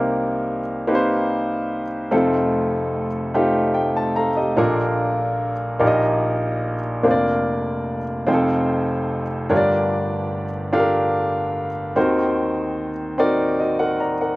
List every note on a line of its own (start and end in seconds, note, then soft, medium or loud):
0.00 2.08 C2 medium
0.00 2.08 C3 medium
0.00 0.59 A#3 medium
0.00 0.59 C4 medium
0.00 0.59 D#4 medium
0.00 0.59 G4 medium
0.00 0.60 A#4 medium
0.87 1.82 A#3 medium
0.87 1.83 C4 medium
0.87 1.83 D#4 medium
0.87 1.83 G4 medium
0.87 0.95 B4 medium
0.95 1.86 C5 medium
2.11 4.54 F1 medium
2.11 4.54 F2 medium
2.11 3.06 A3 medium
2.11 3.06 C4 medium
2.11 3.06 D#4 medium
2.11 3.06 F4 medium
2.11 3.06 A4 medium
3.34 4.29 A3 medium
3.34 4.29 C4 medium
3.34 4.29 D#4 medium
3.34 4.30 F4 medium
3.34 3.76 G4 medium
3.74 4.15 G5 medium
3.97 4.16 A5 medium
4.16 4.37 A4 medium
4.16 4.37 F5 medium
4.16 4.55 A#5 medium
4.37 4.77 G4 medium
4.37 4.76 D#5 medium
4.57 5.77 A#1 medium
4.57 5.77 A#2 medium
4.57 5.52 A#3 medium
4.57 5.52 D4 medium
4.57 5.52 F4 medium
4.57 5.52 A4 medium
4.57 5.53 A#4 medium
5.79 7.00 A#1 medium
5.79 7.00 A#2 medium
5.79 6.75 A#3 medium
5.79 6.75 D#4 medium
5.79 6.75 G4 medium
5.79 6.75 A#4 medium
5.79 5.88 D5 medium
5.87 6.79 D#5 medium
7.03 8.23 F1 medium
7.03 8.23 F2 medium
7.03 7.98 A#3 medium
7.03 7.98 D4 medium
7.03 7.98 F4 medium
7.03 7.98 A#4 medium
7.03 7.11 C5 medium
7.11 8.02 D5 loud
8.27 9.46 F1 medium
8.27 9.46 F2 medium
8.27 9.21 C4 medium
8.27 9.21 D#4 medium
8.27 9.21 F4 medium
8.27 8.34 G#4 medium
8.27 9.22 C5 medium
8.34 9.25 A4 medium
9.49 11.92 G1 medium
9.49 11.92 G2 medium
9.49 10.44 D4 medium
9.49 10.44 F4 medium
9.49 10.44 G4 medium
9.49 10.44 A#4 medium
9.49 9.57 C#5 medium
9.57 10.48 D5 loud
10.73 11.67 D4 medium
10.73 11.67 F4 medium
10.73 11.67 G4 medium
10.73 10.80 A4 medium
10.73 11.67 F5 medium
10.80 11.70 A#4 medium
11.96 14.36 D#2 medium
11.96 14.36 D#3 medium
11.96 12.90 C4 medium
11.96 12.90 D#4 medium
11.96 12.90 F#4 medium
11.96 12.90 A#4 medium
11.96 12.90 C5 medium
13.18 14.12 C4 medium
13.18 14.13 D#4 medium
13.18 13.59 F#4 medium
13.18 13.60 A#4 medium
13.18 13.60 D5 loud
13.60 13.80 F#4 medium
13.60 13.79 D#5 medium
13.79 14.00 A#4 medium
13.79 13.99 F#5 medium
14.00 14.20 D5 medium
14.00 14.20 A#5 medium
14.21 14.36 A#4 medium
14.21 14.36 F#5 medium